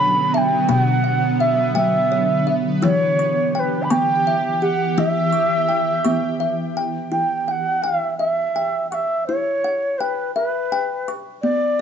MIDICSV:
0, 0, Header, 1, 4, 480
1, 0, Start_track
1, 0, Tempo, 715990
1, 466, Time_signature, 6, 3, 24, 8
1, 7919, End_track
2, 0, Start_track
2, 0, Title_t, "Bansuri"
2, 0, Program_c, 0, 73
2, 0, Note_on_c, 0, 83, 100
2, 226, Note_on_c, 0, 81, 75
2, 236, Note_off_c, 0, 83, 0
2, 250, Note_on_c, 0, 79, 81
2, 257, Note_off_c, 0, 81, 0
2, 464, Note_on_c, 0, 78, 93
2, 474, Note_off_c, 0, 79, 0
2, 940, Note_on_c, 0, 76, 80
2, 950, Note_off_c, 0, 78, 0
2, 1177, Note_off_c, 0, 76, 0
2, 1181, Note_on_c, 0, 76, 85
2, 1692, Note_off_c, 0, 76, 0
2, 1904, Note_on_c, 0, 73, 91
2, 2383, Note_off_c, 0, 73, 0
2, 2383, Note_on_c, 0, 73, 68
2, 2409, Note_on_c, 0, 71, 74
2, 2415, Note_off_c, 0, 73, 0
2, 2567, Note_on_c, 0, 83, 62
2, 2577, Note_off_c, 0, 71, 0
2, 2626, Note_on_c, 0, 79, 86
2, 2637, Note_off_c, 0, 83, 0
2, 3101, Note_on_c, 0, 78, 74
2, 3111, Note_off_c, 0, 79, 0
2, 3346, Note_on_c, 0, 76, 89
2, 3356, Note_off_c, 0, 78, 0
2, 4541, Note_off_c, 0, 76, 0
2, 4770, Note_on_c, 0, 79, 69
2, 5010, Note_off_c, 0, 79, 0
2, 5010, Note_on_c, 0, 79, 57
2, 5034, Note_on_c, 0, 78, 62
2, 5041, Note_off_c, 0, 79, 0
2, 5246, Note_on_c, 0, 76, 65
2, 5256, Note_off_c, 0, 78, 0
2, 5481, Note_off_c, 0, 76, 0
2, 5485, Note_on_c, 0, 76, 67
2, 5946, Note_off_c, 0, 76, 0
2, 5970, Note_on_c, 0, 78, 54
2, 5994, Note_on_c, 0, 76, 59
2, 6001, Note_off_c, 0, 78, 0
2, 6198, Note_off_c, 0, 76, 0
2, 6213, Note_on_c, 0, 73, 66
2, 6694, Note_on_c, 0, 71, 63
2, 6704, Note_off_c, 0, 73, 0
2, 6934, Note_off_c, 0, 71, 0
2, 6938, Note_on_c, 0, 71, 69
2, 7456, Note_off_c, 0, 71, 0
2, 7658, Note_on_c, 0, 74, 77
2, 7919, Note_off_c, 0, 74, 0
2, 7919, End_track
3, 0, Start_track
3, 0, Title_t, "Kalimba"
3, 0, Program_c, 1, 108
3, 0, Note_on_c, 1, 54, 77
3, 0, Note_on_c, 1, 73, 51
3, 0, Note_on_c, 1, 76, 54
3, 0, Note_on_c, 1, 79, 63
3, 221, Note_off_c, 1, 76, 0
3, 226, Note_off_c, 1, 79, 0
3, 229, Note_on_c, 1, 76, 53
3, 438, Note_off_c, 1, 54, 0
3, 459, Note_on_c, 1, 59, 65
3, 460, Note_on_c, 1, 83, 61
3, 464, Note_on_c, 1, 47, 89
3, 697, Note_on_c, 1, 78, 51
3, 707, Note_off_c, 1, 73, 0
3, 933, Note_off_c, 1, 76, 0
3, 940, Note_off_c, 1, 59, 0
3, 942, Note_on_c, 1, 76, 51
3, 1155, Note_off_c, 1, 47, 0
3, 1173, Note_on_c, 1, 79, 66
3, 1179, Note_on_c, 1, 54, 66
3, 1180, Note_off_c, 1, 83, 0
3, 1418, Note_off_c, 1, 78, 0
3, 1419, Note_on_c, 1, 73, 55
3, 1647, Note_off_c, 1, 76, 0
3, 1655, Note_on_c, 1, 76, 52
3, 1656, Note_off_c, 1, 79, 0
3, 1872, Note_off_c, 1, 54, 0
3, 1892, Note_on_c, 1, 64, 67
3, 1894, Note_on_c, 1, 88, 62
3, 1900, Note_on_c, 1, 52, 89
3, 2136, Note_off_c, 1, 76, 0
3, 2138, Note_off_c, 1, 73, 0
3, 2139, Note_on_c, 1, 85, 53
3, 2375, Note_off_c, 1, 64, 0
3, 2380, Note_on_c, 1, 79, 53
3, 2591, Note_off_c, 1, 52, 0
3, 2609, Note_off_c, 1, 85, 0
3, 2615, Note_off_c, 1, 88, 0
3, 2617, Note_on_c, 1, 85, 73
3, 2620, Note_on_c, 1, 59, 77
3, 2863, Note_on_c, 1, 76, 56
3, 3097, Note_off_c, 1, 85, 0
3, 3098, Note_off_c, 1, 79, 0
3, 3098, Note_on_c, 1, 67, 54
3, 3311, Note_off_c, 1, 59, 0
3, 3337, Note_on_c, 1, 52, 94
3, 3339, Note_on_c, 1, 64, 72
3, 3340, Note_on_c, 1, 88, 60
3, 3570, Note_on_c, 1, 85, 53
3, 3579, Note_off_c, 1, 76, 0
3, 3812, Note_on_c, 1, 79, 53
3, 3817, Note_off_c, 1, 64, 0
3, 3817, Note_off_c, 1, 67, 0
3, 4030, Note_off_c, 1, 52, 0
3, 4045, Note_off_c, 1, 85, 0
3, 4053, Note_on_c, 1, 85, 65
3, 4058, Note_off_c, 1, 88, 0
3, 4058, Note_on_c, 1, 59, 72
3, 4291, Note_on_c, 1, 76, 50
3, 4529, Note_off_c, 1, 79, 0
3, 4535, Note_off_c, 1, 85, 0
3, 4538, Note_on_c, 1, 79, 53
3, 4751, Note_off_c, 1, 59, 0
3, 4771, Note_on_c, 1, 64, 52
3, 5014, Note_off_c, 1, 76, 0
3, 5015, Note_on_c, 1, 78, 44
3, 5017, Note_off_c, 1, 79, 0
3, 5253, Note_on_c, 1, 79, 55
3, 5254, Note_off_c, 1, 64, 0
3, 5493, Note_on_c, 1, 76, 43
3, 5729, Note_off_c, 1, 79, 0
3, 5737, Note_off_c, 1, 78, 0
3, 5737, Note_on_c, 1, 79, 51
3, 5981, Note_on_c, 1, 85, 44
3, 6217, Note_off_c, 1, 76, 0
3, 6219, Note_off_c, 1, 79, 0
3, 6227, Note_on_c, 1, 64, 54
3, 6465, Note_on_c, 1, 78, 46
3, 6702, Note_off_c, 1, 85, 0
3, 6705, Note_off_c, 1, 64, 0
3, 6707, Note_on_c, 1, 79, 49
3, 6944, Note_on_c, 1, 76, 49
3, 7180, Note_off_c, 1, 79, 0
3, 7186, Note_off_c, 1, 78, 0
3, 7188, Note_on_c, 1, 79, 58
3, 7430, Note_on_c, 1, 85, 50
3, 7666, Note_off_c, 1, 76, 0
3, 7666, Note_on_c, 1, 59, 55
3, 7668, Note_off_c, 1, 79, 0
3, 7909, Note_off_c, 1, 85, 0
3, 7919, Note_off_c, 1, 59, 0
3, 7919, End_track
4, 0, Start_track
4, 0, Title_t, "Ambient pad"
4, 0, Program_c, 2, 92
4, 0, Note_on_c, 2, 50, 70
4, 0, Note_on_c, 2, 54, 85
4, 0, Note_on_c, 2, 59, 70
4, 1874, Note_off_c, 2, 50, 0
4, 1874, Note_off_c, 2, 54, 0
4, 1896, Note_on_c, 2, 67, 81
4, 1899, Note_on_c, 2, 52, 73
4, 4748, Note_off_c, 2, 67, 0
4, 4749, Note_off_c, 2, 52, 0
4, 4751, Note_off_c, 2, 59, 0
4, 7919, End_track
0, 0, End_of_file